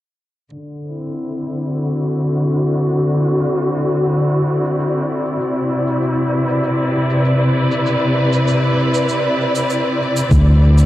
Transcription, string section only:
0, 0, Header, 1, 2, 480
1, 0, Start_track
1, 0, Tempo, 612245
1, 405, Time_signature, 4, 2, 24, 8
1, 8511, End_track
2, 0, Start_track
2, 0, Title_t, "String section"
2, 0, Program_c, 0, 48
2, 405, Note_on_c, 0, 50, 63
2, 684, Note_on_c, 0, 64, 60
2, 686, Note_on_c, 0, 60, 65
2, 1292, Note_on_c, 0, 66, 71
2, 2029, Note_on_c, 0, 74, 65
2, 4243, Note_on_c, 0, 48, 71
2, 4245, Note_off_c, 0, 50, 0
2, 4905, Note_on_c, 0, 71, 67
2, 5442, Note_off_c, 0, 66, 0
2, 8082, Note_on_c, 0, 50, 74
2, 8084, Note_off_c, 0, 48, 0
2, 8511, Note_off_c, 0, 50, 0
2, 8511, Note_off_c, 0, 60, 0
2, 8511, Note_off_c, 0, 64, 0
2, 8511, Note_off_c, 0, 71, 0
2, 8511, Note_off_c, 0, 74, 0
2, 8511, End_track
0, 0, End_of_file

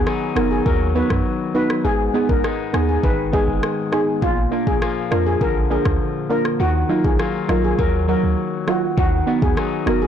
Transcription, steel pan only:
0, 0, Header, 1, 2, 480
1, 0, Start_track
1, 0, Key_signature, -6, "minor"
1, 0, Tempo, 594059
1, 1492, Time_signature, 4, 2, 24, 8
1, 8137, End_track
2, 0, Start_track
2, 0, Title_t, "Steel pan"
2, 0, Program_c, 0, 114
2, 292, Note_on_c, 0, 70, 72
2, 388, Note_off_c, 0, 70, 0
2, 411, Note_on_c, 0, 68, 78
2, 507, Note_off_c, 0, 68, 0
2, 531, Note_on_c, 0, 70, 80
2, 628, Note_off_c, 0, 70, 0
2, 772, Note_on_c, 0, 71, 74
2, 868, Note_off_c, 0, 71, 0
2, 1251, Note_on_c, 0, 71, 81
2, 1348, Note_off_c, 0, 71, 0
2, 1492, Note_on_c, 0, 68, 96
2, 1588, Note_off_c, 0, 68, 0
2, 1852, Note_on_c, 0, 70, 75
2, 1948, Note_off_c, 0, 70, 0
2, 2213, Note_on_c, 0, 68, 69
2, 2309, Note_off_c, 0, 68, 0
2, 2334, Note_on_c, 0, 68, 68
2, 2429, Note_off_c, 0, 68, 0
2, 2453, Note_on_c, 0, 71, 76
2, 2548, Note_off_c, 0, 71, 0
2, 2694, Note_on_c, 0, 68, 77
2, 2789, Note_off_c, 0, 68, 0
2, 3172, Note_on_c, 0, 68, 80
2, 3268, Note_off_c, 0, 68, 0
2, 3413, Note_on_c, 0, 65, 91
2, 3508, Note_off_c, 0, 65, 0
2, 3773, Note_on_c, 0, 68, 77
2, 3869, Note_off_c, 0, 68, 0
2, 4134, Note_on_c, 0, 70, 72
2, 4229, Note_off_c, 0, 70, 0
2, 4253, Note_on_c, 0, 68, 80
2, 4349, Note_off_c, 0, 68, 0
2, 4375, Note_on_c, 0, 70, 80
2, 4470, Note_off_c, 0, 70, 0
2, 4614, Note_on_c, 0, 70, 74
2, 4709, Note_off_c, 0, 70, 0
2, 5094, Note_on_c, 0, 70, 83
2, 5189, Note_off_c, 0, 70, 0
2, 5336, Note_on_c, 0, 66, 95
2, 5430, Note_off_c, 0, 66, 0
2, 5695, Note_on_c, 0, 68, 75
2, 5790, Note_off_c, 0, 68, 0
2, 6054, Note_on_c, 0, 70, 72
2, 6149, Note_off_c, 0, 70, 0
2, 6176, Note_on_c, 0, 68, 71
2, 6270, Note_off_c, 0, 68, 0
2, 6294, Note_on_c, 0, 70, 81
2, 6389, Note_off_c, 0, 70, 0
2, 6534, Note_on_c, 0, 70, 78
2, 6629, Note_off_c, 0, 70, 0
2, 7015, Note_on_c, 0, 66, 78
2, 7110, Note_off_c, 0, 66, 0
2, 7254, Note_on_c, 0, 66, 92
2, 7349, Note_off_c, 0, 66, 0
2, 7616, Note_on_c, 0, 68, 80
2, 7710, Note_off_c, 0, 68, 0
2, 7974, Note_on_c, 0, 70, 75
2, 8069, Note_off_c, 0, 70, 0
2, 8094, Note_on_c, 0, 68, 78
2, 8137, Note_off_c, 0, 68, 0
2, 8137, End_track
0, 0, End_of_file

